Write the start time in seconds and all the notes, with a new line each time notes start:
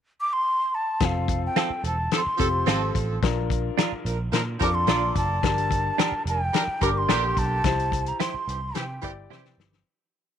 0.21 D6
0.33 C6
0.75 A5
1.00 F1 C4 F4 A4, kick, snare, closed hi-hat
1.05 F5
1.28 kick, closed hi-hat
1.46 G5
1.56 C4 F4 A4, snare, closed hi-hat
1.70 muted picked electric bass stroke
1.83 E1 F3 C4 A4 A5, closed hi-hat
2.11 F3 C4 A4 C6, snare, closed hi-hat
2.26 muted picked electric bass stroke
2.38 F1 F3 C4 F4 G4 A4, kick, closed hi-hat
2.66 G#1 F3 C4 F4 A4, snare, closed hi-hat
2.95 A1, kick, closed hi-hat
3.22 A#1 D4 F4 A#4, kick, snare, closed hi-hat
3.50 kick, closed hi-hat
3.78 D4 F4 A#4, snare, closed hi-hat
3.92 muted picked electric bass stroke
4.05 A#1 F3 D4 A#4, closed hi-hat
4.32 A#2 F3 D4 A#4, snare, closed hi-hat
4.59 F2 F3 D4 F4 A4 A#4 D6, kick, closed hi-hat
4.74 C6
4.87 A#1 A#3 D4 F4 A#4 D5, snare, closed hi-hat
5.15 F#1 A5, kick, closed hi-hat
5.42 G1 D4 G4 A#4, kick, snare, closed hi-hat
5.58 closed hi-hat
5.71 kick, closed hi-hat
5.98 D4 G4 A#4, snare, closed hi-hat
6.12 muted picked electric bass stroke
6.26 F1 G3 D4 A#4 G5, closed hi-hat
6.53 G3 D4 A#4, snare, closed hi-hat
6.68 muted picked electric bass stroke
6.81 G1 G3 D4 G4 A#4 D6, kick, closed hi-hat
6.98 C6
7.09 A#1 D3 A#3 D4 G4 A#4, snare, closed hi-hat
7.37 B1 A5, kick, closed hi-hat
7.64 C2 E4 G4 C5, kick, snare, closed hi-hat
7.79 closed hi-hat
7.92 kick, closed hi-hat
8.06 A#5, closed hi-hat
8.20 E4 G4 C5 C6, snare, closed hi-hat
8.34 muted picked electric bass stroke
8.47 C2 E3 C4 G4, closed hi-hat
8.74 C3 E3 C4 G4 G5, snare, closed hi-hat
9.02 G1 E3 C4 E4 G4 D5, kick, closed hi-hat
9.30 C3 E3 C4 E4 G4 C5, snare
9.45 snare
9.58 G1, snare
9.73 snare